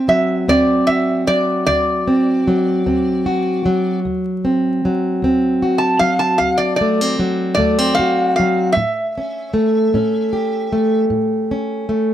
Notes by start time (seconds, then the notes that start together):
Already playing: C4
0.08 F#3 E5
0.48 D2 C4 D5
0.87 F#4 E5
1.27 F#3 D5
1.67 D2 D5
2.08 C4
2.48 F#3
2.86 D2 C4
3.26 F#4
3.66 F#3
4.05 D2
4.45 C4
4.85 F#3
5.22 D2 C4
5.62 F#4
5.78 A5
5.99 F#3 F5
6.19 A5
6.38 D2 F5
6.58 D5
6.76 D5
6.81 A3
7.01 C4
7.19 F#3
7.55 D2 A3 D5
7.79 C4
7.95 F5
7.99 F#4
8.36 F#3 F5
8.72 E5
8.77 A2
9.18 C#4
9.54 A3
9.94 A2 C#4
10.33 G4
10.73 A3
11.10 A2
11.51 C#4
11.89 A3